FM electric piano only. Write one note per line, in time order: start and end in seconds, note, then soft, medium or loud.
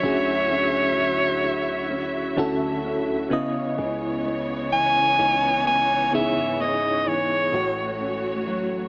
0.00 0.02 D3 medium
0.00 1.61 D3 medium
0.00 1.61 C#4 medium
0.00 3.33 D4 medium
0.00 3.32 E4 medium
0.00 0.04 F#4 medium
0.00 1.62 F#4 medium
0.00 3.33 E5 medium
0.05 1.62 G#4 medium
2.36 3.31 D3 medium
2.36 3.31 C#4 medium
2.36 3.32 F#4 medium
2.36 3.32 A4 loud
3.30 4.89 C#3 loud
3.30 4.89 B3 medium
3.30 4.90 E4 medium
3.30 4.90 D#5 loud
6.11 7.31 C#3 medium
6.11 7.31 B3 medium
6.11 6.19 D#4 medium
6.11 7.32 G#4 medium
6.20 7.35 E4 medium
7.52 8.88 A2 medium
7.52 8.88 A3 medium
7.52 8.88 F#4 medium
7.52 8.88 C#5 medium